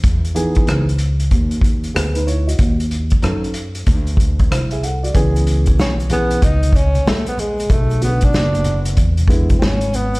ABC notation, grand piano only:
X:1
M:4/4
L:1/16
Q:"Swing 16ths" 1/4=94
K:C#m
V:1 name="Grand piano"
z12 [B,G] [DB] [Ec] [Fd]- | [Fd] z8 z3 [E=c] [Ge] [Af] [F=d]- | [F=d] z12 z3 | z16 |]
V:2 name="Grand piano"
z2 [E,B,DG]2 z12 | z4 [F,CDA]2 z8 z2 | [E,B,CG]6 [E,B,CG]2 z8 | z2 [C,=D,A,B,F]6 z2 [D,G,B,E]2 z4 |]